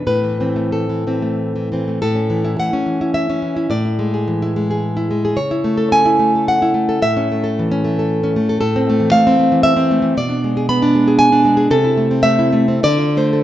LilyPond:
\new Staff \with { instrumentName = "Nylon-string guitar" } { \time 3/4 \key a \minor \tempo 4 = 109 << { b'4 a'4. r8 | \key a \major a'4 fis''4 e''4 | d''2~ d''8 r8 | cis''4 gis''4 fis''4 |
e''2~ e''8 r8 | \key a \minor a'4 f''4 e''4 | d''4 b''4 gis''4 | a'4 e''4 d''8 c''8 | } \\ { a,16 e16 <e c'>16 a8 e16 <e c'>16 a8 e16 <e c'>16 a16 | a,16 cis'16 e16 e'16 a16 cis'16 e16 e'8 cis'16 e16 e'16 | a,16 e'16 gis16 gis'16 e16 e'16 gis16 gis'8 e'16 gis16 gis'16 | cis16 e'16 a16 a'16 cis'16 e'16 a16 a'8 e'16 a16 a'16 |
a,16 cis'16 a16 a'16 e16 cis'16 a16 a'8 cis'16 a16 a'16 | a,16 c'16 a16 e16 a16 c'16 a16 e8 c'16 a16 e16 | b,16 d'16 gis16 gis'16 b16 d'16 gis16 gis'8 d'16 gis16 gis'16 | c16 e'16 a16 c'16 a16 e'16 a16 c'16 d16 f'16 a16 a'16 | } >> }